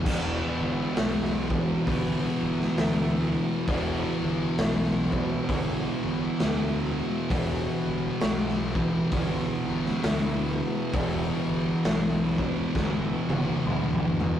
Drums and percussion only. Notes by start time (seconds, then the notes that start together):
0.06 kick, crash
0.96 snare, open hi-hat
1.25 snare
1.50 kick
1.87 kick, open hi-hat
2.60 snare
2.77 snare, open hi-hat
3.68 kick, open hi-hat
4.58 snare, open hi-hat
4.86 snare
5.12 kick
5.49 kick, open hi-hat
6.40 snare, open hi-hat
7.30 kick, open hi-hat
8.21 snare, open hi-hat
8.49 snare
8.75 kick
9.11 kick, open hi-hat
9.86 snare
10.03 snare, open hi-hat
10.93 kick, open hi-hat
11.84 snare, open hi-hat
12.38 kick
12.75 kick, snare
13.29 high tom
13.66 mid tom
13.93 mid tom
14.20 floor tom